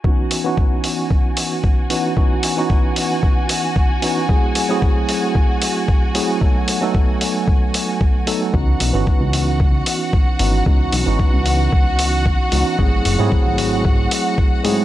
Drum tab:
HH |-o-o-o-o|-o-o-o-o|-o-o-o-o|-o-o-o-o|
BD |o-o-o-o-|o-o-o-o-|o-o-o-o-|o-o-o-o-|

HH |-o-o-o-o|-o-o-o-o|-o-o-o-o|
BD |o-o-o-o-|o-o-o-o-|o-o-o-o-|